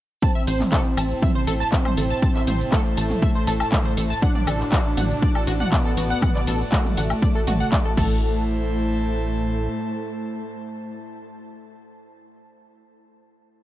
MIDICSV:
0, 0, Header, 1, 7, 480
1, 0, Start_track
1, 0, Tempo, 500000
1, 215, Time_signature, 4, 2, 24, 8
1, 13086, End_track
2, 0, Start_track
2, 0, Title_t, "Synth arpeggio sound"
2, 0, Program_c, 0, 84
2, 215, Note_on_c, 0, 81, 83
2, 293, Note_off_c, 0, 81, 0
2, 339, Note_on_c, 0, 76, 75
2, 412, Note_off_c, 0, 76, 0
2, 455, Note_on_c, 0, 72, 77
2, 571, Note_off_c, 0, 72, 0
2, 695, Note_on_c, 0, 69, 98
2, 772, Note_off_c, 0, 69, 0
2, 935, Note_on_c, 0, 81, 78
2, 981, Note_off_c, 0, 81, 0
2, 1175, Note_on_c, 0, 76, 77
2, 1252, Note_off_c, 0, 76, 0
2, 1299, Note_on_c, 0, 72, 80
2, 1371, Note_off_c, 0, 72, 0
2, 1415, Note_on_c, 0, 69, 102
2, 1461, Note_off_c, 0, 69, 0
2, 1539, Note_on_c, 0, 81, 103
2, 1612, Note_off_c, 0, 81, 0
2, 1656, Note_on_c, 0, 76, 88
2, 1702, Note_off_c, 0, 76, 0
2, 1780, Note_on_c, 0, 72, 76
2, 1852, Note_off_c, 0, 72, 0
2, 1896, Note_on_c, 0, 69, 75
2, 1942, Note_off_c, 0, 69, 0
2, 2020, Note_on_c, 0, 81, 106
2, 2092, Note_off_c, 0, 81, 0
2, 2136, Note_on_c, 0, 81, 85
2, 2213, Note_off_c, 0, 81, 0
2, 2260, Note_on_c, 0, 76, 78
2, 2332, Note_off_c, 0, 76, 0
2, 2376, Note_on_c, 0, 72, 76
2, 2492, Note_off_c, 0, 72, 0
2, 2616, Note_on_c, 0, 69, 104
2, 2693, Note_off_c, 0, 69, 0
2, 2856, Note_on_c, 0, 81, 79
2, 2902, Note_off_c, 0, 81, 0
2, 3095, Note_on_c, 0, 76, 78
2, 3173, Note_off_c, 0, 76, 0
2, 3219, Note_on_c, 0, 72, 82
2, 3292, Note_off_c, 0, 72, 0
2, 3335, Note_on_c, 0, 69, 112
2, 3381, Note_off_c, 0, 69, 0
2, 3460, Note_on_c, 0, 81, 96
2, 3532, Note_off_c, 0, 81, 0
2, 3575, Note_on_c, 0, 76, 87
2, 3622, Note_off_c, 0, 76, 0
2, 3699, Note_on_c, 0, 72, 71
2, 3771, Note_off_c, 0, 72, 0
2, 3815, Note_on_c, 0, 69, 76
2, 3861, Note_off_c, 0, 69, 0
2, 3939, Note_on_c, 0, 81, 112
2, 4011, Note_off_c, 0, 81, 0
2, 4055, Note_on_c, 0, 78, 81
2, 4132, Note_off_c, 0, 78, 0
2, 4178, Note_on_c, 0, 74, 81
2, 4251, Note_off_c, 0, 74, 0
2, 4295, Note_on_c, 0, 69, 78
2, 4411, Note_off_c, 0, 69, 0
2, 4535, Note_on_c, 0, 66, 103
2, 4613, Note_off_c, 0, 66, 0
2, 4774, Note_on_c, 0, 78, 77
2, 4821, Note_off_c, 0, 78, 0
2, 5015, Note_on_c, 0, 74, 80
2, 5092, Note_off_c, 0, 74, 0
2, 5138, Note_on_c, 0, 69, 83
2, 5211, Note_off_c, 0, 69, 0
2, 5254, Note_on_c, 0, 66, 105
2, 5301, Note_off_c, 0, 66, 0
2, 5378, Note_on_c, 0, 78, 104
2, 5451, Note_off_c, 0, 78, 0
2, 5494, Note_on_c, 0, 74, 88
2, 5541, Note_off_c, 0, 74, 0
2, 5619, Note_on_c, 0, 69, 74
2, 5691, Note_off_c, 0, 69, 0
2, 5735, Note_on_c, 0, 66, 77
2, 5781, Note_off_c, 0, 66, 0
2, 5858, Note_on_c, 0, 78, 110
2, 5931, Note_off_c, 0, 78, 0
2, 5974, Note_on_c, 0, 78, 84
2, 6052, Note_off_c, 0, 78, 0
2, 6099, Note_on_c, 0, 74, 79
2, 6172, Note_off_c, 0, 74, 0
2, 6215, Note_on_c, 0, 69, 78
2, 6331, Note_off_c, 0, 69, 0
2, 6455, Note_on_c, 0, 66, 102
2, 6532, Note_off_c, 0, 66, 0
2, 6695, Note_on_c, 0, 78, 77
2, 6741, Note_off_c, 0, 78, 0
2, 6935, Note_on_c, 0, 74, 76
2, 7012, Note_off_c, 0, 74, 0
2, 7059, Note_on_c, 0, 69, 80
2, 7131, Note_off_c, 0, 69, 0
2, 7175, Note_on_c, 0, 66, 105
2, 7221, Note_off_c, 0, 66, 0
2, 7299, Note_on_c, 0, 78, 96
2, 7371, Note_off_c, 0, 78, 0
2, 7415, Note_on_c, 0, 74, 87
2, 7461, Note_off_c, 0, 74, 0
2, 7539, Note_on_c, 0, 69, 77
2, 7611, Note_off_c, 0, 69, 0
2, 7655, Note_on_c, 0, 69, 91
2, 8101, Note_off_c, 0, 69, 0
2, 13086, End_track
3, 0, Start_track
3, 0, Title_t, "Analog synth pad"
3, 0, Program_c, 1, 89
3, 215, Note_on_c, 1, 64, 71
3, 559, Note_on_c, 1, 81, 78
3, 774, Note_on_c, 1, 72, 89
3, 4055, Note_on_c, 1, 66, 86
3, 4485, Note_on_c, 1, 74, 86
3, 5270, Note_off_c, 1, 72, 0
3, 5594, Note_off_c, 1, 64, 0
3, 7654, Note_on_c, 1, 64, 80
3, 7655, Note_off_c, 1, 66, 0
3, 7655, Note_off_c, 1, 74, 0
3, 7655, Note_off_c, 1, 81, 0
3, 7729, Note_on_c, 1, 72, 83
3, 8041, Note_on_c, 1, 81, 76
3, 10551, Note_off_c, 1, 64, 0
3, 10626, Note_off_c, 1, 72, 0
3, 10938, Note_off_c, 1, 81, 0
3, 13086, End_track
4, 0, Start_track
4, 0, Title_t, "Analog synth lead"
4, 0, Program_c, 2, 81
4, 215, Note_on_c, 2, 60, 107
4, 1562, Note_off_c, 2, 60, 0
4, 1655, Note_on_c, 2, 60, 99
4, 2615, Note_on_c, 2, 57, 107
4, 2630, Note_off_c, 2, 60, 0
4, 3962, Note_off_c, 2, 57, 0
4, 4054, Note_on_c, 2, 62, 106
4, 5402, Note_off_c, 2, 62, 0
4, 5494, Note_on_c, 2, 59, 97
4, 6362, Note_off_c, 2, 59, 0
4, 6454, Note_on_c, 2, 57, 108
4, 7649, Note_off_c, 2, 57, 0
4, 7655, Note_on_c, 2, 57, 108
4, 10552, Note_off_c, 2, 57, 0
4, 13086, End_track
5, 0, Start_track
5, 0, Title_t, "Synth drone"
5, 0, Program_c, 3, 95
5, 215, Note_on_c, 3, 45, 83
5, 7644, Note_off_c, 3, 45, 0
5, 7655, Note_on_c, 3, 45, 75
5, 10552, Note_off_c, 3, 45, 0
5, 13086, End_track
6, 0, Start_track
6, 0, Title_t, "Analog synth bass"
6, 0, Program_c, 4, 38
6, 455, Note_on_c, 4, 33, 95
6, 616, Note_off_c, 4, 33, 0
6, 935, Note_on_c, 4, 33, 89
6, 1096, Note_off_c, 4, 33, 0
6, 1414, Note_on_c, 4, 33, 97
6, 1576, Note_off_c, 4, 33, 0
6, 1894, Note_on_c, 4, 33, 81
6, 2056, Note_off_c, 4, 33, 0
6, 2375, Note_on_c, 4, 33, 98
6, 2536, Note_off_c, 4, 33, 0
6, 2855, Note_on_c, 4, 33, 85
6, 3016, Note_off_c, 4, 33, 0
6, 3334, Note_on_c, 4, 33, 96
6, 3496, Note_off_c, 4, 33, 0
6, 3814, Note_on_c, 4, 33, 79
6, 3976, Note_off_c, 4, 33, 0
6, 4294, Note_on_c, 4, 33, 99
6, 4456, Note_off_c, 4, 33, 0
6, 4774, Note_on_c, 4, 33, 88
6, 4936, Note_off_c, 4, 33, 0
6, 5255, Note_on_c, 4, 33, 96
6, 5416, Note_off_c, 4, 33, 0
6, 5735, Note_on_c, 4, 33, 80
6, 5897, Note_off_c, 4, 33, 0
6, 6215, Note_on_c, 4, 33, 94
6, 6376, Note_off_c, 4, 33, 0
6, 6695, Note_on_c, 4, 33, 92
6, 6856, Note_off_c, 4, 33, 0
6, 7175, Note_on_c, 4, 33, 100
6, 7336, Note_off_c, 4, 33, 0
6, 7655, Note_on_c, 4, 33, 98
6, 9296, Note_off_c, 4, 33, 0
6, 13086, End_track
7, 0, Start_track
7, 0, Title_t, "Drums"
7, 211, Note_on_c, 9, 82, 66
7, 215, Note_on_c, 9, 36, 123
7, 215, Note_on_c, 9, 51, 54
7, 307, Note_off_c, 9, 82, 0
7, 311, Note_off_c, 9, 36, 0
7, 311, Note_off_c, 9, 51, 0
7, 339, Note_on_c, 9, 82, 37
7, 435, Note_off_c, 9, 82, 0
7, 455, Note_on_c, 9, 46, 99
7, 455, Note_on_c, 9, 51, 76
7, 551, Note_off_c, 9, 46, 0
7, 551, Note_off_c, 9, 51, 0
7, 579, Note_on_c, 9, 39, 39
7, 579, Note_on_c, 9, 45, 94
7, 580, Note_on_c, 9, 82, 91
7, 675, Note_off_c, 9, 39, 0
7, 675, Note_off_c, 9, 45, 0
7, 676, Note_off_c, 9, 82, 0
7, 691, Note_on_c, 9, 82, 69
7, 695, Note_on_c, 9, 36, 127
7, 695, Note_on_c, 9, 39, 127
7, 695, Note_on_c, 9, 51, 58
7, 787, Note_off_c, 9, 82, 0
7, 791, Note_off_c, 9, 36, 0
7, 791, Note_off_c, 9, 39, 0
7, 791, Note_off_c, 9, 51, 0
7, 811, Note_on_c, 9, 82, 36
7, 907, Note_off_c, 9, 82, 0
7, 935, Note_on_c, 9, 46, 96
7, 935, Note_on_c, 9, 51, 76
7, 935, Note_on_c, 9, 77, 51
7, 1031, Note_off_c, 9, 46, 0
7, 1031, Note_off_c, 9, 51, 0
7, 1031, Note_off_c, 9, 77, 0
7, 1050, Note_on_c, 9, 82, 72
7, 1146, Note_off_c, 9, 82, 0
7, 1175, Note_on_c, 9, 36, 123
7, 1175, Note_on_c, 9, 45, 100
7, 1175, Note_on_c, 9, 51, 59
7, 1176, Note_on_c, 9, 82, 70
7, 1271, Note_off_c, 9, 36, 0
7, 1271, Note_off_c, 9, 45, 0
7, 1271, Note_off_c, 9, 51, 0
7, 1272, Note_off_c, 9, 82, 0
7, 1307, Note_on_c, 9, 82, 40
7, 1403, Note_off_c, 9, 82, 0
7, 1415, Note_on_c, 9, 46, 102
7, 1415, Note_on_c, 9, 51, 78
7, 1511, Note_off_c, 9, 46, 0
7, 1511, Note_off_c, 9, 51, 0
7, 1536, Note_on_c, 9, 82, 73
7, 1632, Note_off_c, 9, 82, 0
7, 1652, Note_on_c, 9, 82, 65
7, 1655, Note_on_c, 9, 36, 116
7, 1655, Note_on_c, 9, 39, 125
7, 1655, Note_on_c, 9, 51, 57
7, 1748, Note_off_c, 9, 82, 0
7, 1751, Note_off_c, 9, 36, 0
7, 1751, Note_off_c, 9, 39, 0
7, 1751, Note_off_c, 9, 51, 0
7, 1776, Note_on_c, 9, 82, 41
7, 1779, Note_on_c, 9, 45, 98
7, 1779, Note_on_c, 9, 77, 51
7, 1872, Note_off_c, 9, 82, 0
7, 1875, Note_off_c, 9, 45, 0
7, 1875, Note_off_c, 9, 77, 0
7, 1894, Note_on_c, 9, 46, 91
7, 1894, Note_on_c, 9, 51, 80
7, 1990, Note_off_c, 9, 46, 0
7, 1990, Note_off_c, 9, 51, 0
7, 2018, Note_on_c, 9, 82, 84
7, 2114, Note_off_c, 9, 82, 0
7, 2134, Note_on_c, 9, 51, 55
7, 2135, Note_on_c, 9, 36, 122
7, 2142, Note_on_c, 9, 82, 71
7, 2230, Note_off_c, 9, 51, 0
7, 2231, Note_off_c, 9, 36, 0
7, 2238, Note_off_c, 9, 82, 0
7, 2258, Note_on_c, 9, 39, 42
7, 2259, Note_on_c, 9, 82, 45
7, 2354, Note_off_c, 9, 39, 0
7, 2355, Note_off_c, 9, 82, 0
7, 2374, Note_on_c, 9, 45, 85
7, 2374, Note_on_c, 9, 46, 113
7, 2374, Note_on_c, 9, 51, 76
7, 2470, Note_off_c, 9, 45, 0
7, 2470, Note_off_c, 9, 46, 0
7, 2470, Note_off_c, 9, 51, 0
7, 2499, Note_on_c, 9, 82, 88
7, 2595, Note_off_c, 9, 82, 0
7, 2614, Note_on_c, 9, 39, 127
7, 2614, Note_on_c, 9, 51, 55
7, 2614, Note_on_c, 9, 77, 51
7, 2615, Note_on_c, 9, 36, 127
7, 2615, Note_on_c, 9, 82, 68
7, 2710, Note_off_c, 9, 39, 0
7, 2710, Note_off_c, 9, 51, 0
7, 2710, Note_off_c, 9, 77, 0
7, 2711, Note_off_c, 9, 36, 0
7, 2711, Note_off_c, 9, 82, 0
7, 2734, Note_on_c, 9, 82, 36
7, 2830, Note_off_c, 9, 82, 0
7, 2854, Note_on_c, 9, 46, 102
7, 2854, Note_on_c, 9, 51, 77
7, 2950, Note_off_c, 9, 46, 0
7, 2950, Note_off_c, 9, 51, 0
7, 2978, Note_on_c, 9, 45, 88
7, 2981, Note_on_c, 9, 82, 80
7, 3074, Note_off_c, 9, 45, 0
7, 3077, Note_off_c, 9, 82, 0
7, 3089, Note_on_c, 9, 82, 73
7, 3094, Note_on_c, 9, 51, 57
7, 3095, Note_on_c, 9, 36, 127
7, 3185, Note_off_c, 9, 82, 0
7, 3190, Note_off_c, 9, 51, 0
7, 3191, Note_off_c, 9, 36, 0
7, 3215, Note_on_c, 9, 82, 46
7, 3311, Note_off_c, 9, 82, 0
7, 3334, Note_on_c, 9, 46, 108
7, 3334, Note_on_c, 9, 51, 74
7, 3430, Note_off_c, 9, 46, 0
7, 3430, Note_off_c, 9, 51, 0
7, 3458, Note_on_c, 9, 77, 54
7, 3458, Note_on_c, 9, 82, 81
7, 3554, Note_off_c, 9, 77, 0
7, 3554, Note_off_c, 9, 82, 0
7, 3570, Note_on_c, 9, 82, 71
7, 3574, Note_on_c, 9, 39, 127
7, 3574, Note_on_c, 9, 45, 89
7, 3574, Note_on_c, 9, 51, 56
7, 3575, Note_on_c, 9, 36, 127
7, 3666, Note_off_c, 9, 82, 0
7, 3670, Note_off_c, 9, 39, 0
7, 3670, Note_off_c, 9, 45, 0
7, 3670, Note_off_c, 9, 51, 0
7, 3671, Note_off_c, 9, 36, 0
7, 3701, Note_on_c, 9, 82, 44
7, 3797, Note_off_c, 9, 82, 0
7, 3814, Note_on_c, 9, 46, 96
7, 3814, Note_on_c, 9, 51, 75
7, 3910, Note_off_c, 9, 46, 0
7, 3910, Note_off_c, 9, 51, 0
7, 3942, Note_on_c, 9, 82, 84
7, 4038, Note_off_c, 9, 82, 0
7, 4053, Note_on_c, 9, 82, 75
7, 4054, Note_on_c, 9, 51, 54
7, 4055, Note_on_c, 9, 36, 127
7, 4149, Note_off_c, 9, 82, 0
7, 4150, Note_off_c, 9, 51, 0
7, 4151, Note_off_c, 9, 36, 0
7, 4178, Note_on_c, 9, 45, 90
7, 4181, Note_on_c, 9, 82, 42
7, 4274, Note_off_c, 9, 45, 0
7, 4277, Note_off_c, 9, 82, 0
7, 4294, Note_on_c, 9, 46, 112
7, 4294, Note_on_c, 9, 51, 67
7, 4294, Note_on_c, 9, 77, 53
7, 4390, Note_off_c, 9, 46, 0
7, 4390, Note_off_c, 9, 51, 0
7, 4390, Note_off_c, 9, 77, 0
7, 4418, Note_on_c, 9, 39, 39
7, 4422, Note_on_c, 9, 82, 83
7, 4514, Note_off_c, 9, 39, 0
7, 4518, Note_off_c, 9, 82, 0
7, 4533, Note_on_c, 9, 39, 125
7, 4533, Note_on_c, 9, 51, 51
7, 4533, Note_on_c, 9, 82, 78
7, 4535, Note_on_c, 9, 36, 127
7, 4629, Note_off_c, 9, 39, 0
7, 4629, Note_off_c, 9, 51, 0
7, 4629, Note_off_c, 9, 82, 0
7, 4631, Note_off_c, 9, 36, 0
7, 4658, Note_on_c, 9, 82, 38
7, 4754, Note_off_c, 9, 82, 0
7, 4774, Note_on_c, 9, 45, 94
7, 4774, Note_on_c, 9, 46, 100
7, 4774, Note_on_c, 9, 51, 77
7, 4870, Note_off_c, 9, 45, 0
7, 4870, Note_off_c, 9, 46, 0
7, 4870, Note_off_c, 9, 51, 0
7, 4897, Note_on_c, 9, 82, 90
7, 4993, Note_off_c, 9, 82, 0
7, 5010, Note_on_c, 9, 82, 72
7, 5014, Note_on_c, 9, 51, 54
7, 5015, Note_on_c, 9, 36, 127
7, 5106, Note_off_c, 9, 82, 0
7, 5110, Note_off_c, 9, 51, 0
7, 5111, Note_off_c, 9, 36, 0
7, 5138, Note_on_c, 9, 77, 52
7, 5139, Note_on_c, 9, 82, 44
7, 5234, Note_off_c, 9, 77, 0
7, 5235, Note_off_c, 9, 82, 0
7, 5254, Note_on_c, 9, 46, 108
7, 5254, Note_on_c, 9, 51, 69
7, 5350, Note_off_c, 9, 46, 0
7, 5350, Note_off_c, 9, 51, 0
7, 5377, Note_on_c, 9, 82, 84
7, 5378, Note_on_c, 9, 45, 100
7, 5473, Note_off_c, 9, 82, 0
7, 5474, Note_off_c, 9, 45, 0
7, 5494, Note_on_c, 9, 39, 127
7, 5494, Note_on_c, 9, 51, 54
7, 5494, Note_on_c, 9, 82, 63
7, 5495, Note_on_c, 9, 36, 127
7, 5590, Note_off_c, 9, 39, 0
7, 5590, Note_off_c, 9, 51, 0
7, 5590, Note_off_c, 9, 82, 0
7, 5591, Note_off_c, 9, 36, 0
7, 5622, Note_on_c, 9, 82, 47
7, 5718, Note_off_c, 9, 82, 0
7, 5734, Note_on_c, 9, 46, 99
7, 5734, Note_on_c, 9, 51, 76
7, 5830, Note_off_c, 9, 46, 0
7, 5830, Note_off_c, 9, 51, 0
7, 5855, Note_on_c, 9, 82, 88
7, 5951, Note_off_c, 9, 82, 0
7, 5974, Note_on_c, 9, 45, 93
7, 5974, Note_on_c, 9, 51, 53
7, 5974, Note_on_c, 9, 77, 56
7, 5975, Note_on_c, 9, 36, 125
7, 5975, Note_on_c, 9, 82, 64
7, 6070, Note_off_c, 9, 45, 0
7, 6070, Note_off_c, 9, 51, 0
7, 6070, Note_off_c, 9, 77, 0
7, 6071, Note_off_c, 9, 36, 0
7, 6071, Note_off_c, 9, 82, 0
7, 6098, Note_on_c, 9, 39, 38
7, 6098, Note_on_c, 9, 82, 38
7, 6194, Note_off_c, 9, 39, 0
7, 6194, Note_off_c, 9, 82, 0
7, 6215, Note_on_c, 9, 46, 108
7, 6215, Note_on_c, 9, 51, 72
7, 6311, Note_off_c, 9, 46, 0
7, 6311, Note_off_c, 9, 51, 0
7, 6341, Note_on_c, 9, 82, 90
7, 6437, Note_off_c, 9, 82, 0
7, 6454, Note_on_c, 9, 39, 120
7, 6454, Note_on_c, 9, 51, 54
7, 6455, Note_on_c, 9, 36, 127
7, 6456, Note_on_c, 9, 82, 75
7, 6550, Note_off_c, 9, 39, 0
7, 6550, Note_off_c, 9, 51, 0
7, 6551, Note_off_c, 9, 36, 0
7, 6552, Note_off_c, 9, 82, 0
7, 6578, Note_on_c, 9, 45, 95
7, 6579, Note_on_c, 9, 82, 41
7, 6674, Note_off_c, 9, 45, 0
7, 6675, Note_off_c, 9, 82, 0
7, 6694, Note_on_c, 9, 46, 99
7, 6694, Note_on_c, 9, 51, 72
7, 6790, Note_off_c, 9, 46, 0
7, 6790, Note_off_c, 9, 51, 0
7, 6817, Note_on_c, 9, 82, 83
7, 6818, Note_on_c, 9, 77, 55
7, 6913, Note_off_c, 9, 82, 0
7, 6914, Note_off_c, 9, 77, 0
7, 6934, Note_on_c, 9, 51, 54
7, 6935, Note_on_c, 9, 36, 127
7, 6938, Note_on_c, 9, 82, 73
7, 7030, Note_off_c, 9, 51, 0
7, 7031, Note_off_c, 9, 36, 0
7, 7034, Note_off_c, 9, 82, 0
7, 7066, Note_on_c, 9, 82, 42
7, 7162, Note_off_c, 9, 82, 0
7, 7174, Note_on_c, 9, 45, 94
7, 7174, Note_on_c, 9, 46, 105
7, 7174, Note_on_c, 9, 51, 69
7, 7270, Note_off_c, 9, 45, 0
7, 7270, Note_off_c, 9, 46, 0
7, 7270, Note_off_c, 9, 51, 0
7, 7298, Note_on_c, 9, 82, 80
7, 7394, Note_off_c, 9, 82, 0
7, 7414, Note_on_c, 9, 39, 122
7, 7414, Note_on_c, 9, 51, 50
7, 7415, Note_on_c, 9, 36, 127
7, 7416, Note_on_c, 9, 82, 66
7, 7510, Note_off_c, 9, 39, 0
7, 7510, Note_off_c, 9, 51, 0
7, 7511, Note_off_c, 9, 36, 0
7, 7512, Note_off_c, 9, 82, 0
7, 7532, Note_on_c, 9, 82, 47
7, 7628, Note_off_c, 9, 82, 0
7, 7654, Note_on_c, 9, 49, 84
7, 7655, Note_on_c, 9, 36, 115
7, 7750, Note_off_c, 9, 49, 0
7, 7751, Note_off_c, 9, 36, 0
7, 7781, Note_on_c, 9, 82, 83
7, 7877, Note_off_c, 9, 82, 0
7, 13086, End_track
0, 0, End_of_file